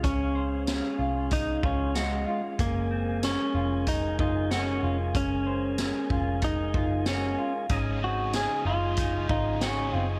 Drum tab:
HH |x-x-x-x-|x-x-x-x-|x-x-x-x-|x-x-x-x-|
TB |--x---x-|--x---x-|--x---x-|--x---x-|
SD |--o---o-|--o---o-|--o---o-|--o---o-|
BD |o---oo--|o---oo--|o--ooo--|o---oo--|